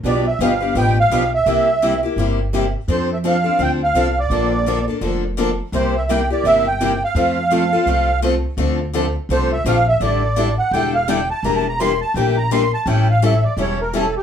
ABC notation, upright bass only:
X:1
M:4/4
L:1/8
Q:"Swing" 1/4=168
K:F
V:1 name="Upright bass" clef=bass
=B,,,2 G,,,2 A,,,2 B,,,2 | C,,4 G,,,4 | F,,4 D,,2 C,,2 | B,,,4 F,,,4 |
C,,4 G,,,4 | F,,4 C,,4 | [K:Dm] D,,4 C,,2 B,,,2 | A,,,4 E,,,4 |
E,,,4 B,,,4 | A,,,4 E,,,4 |]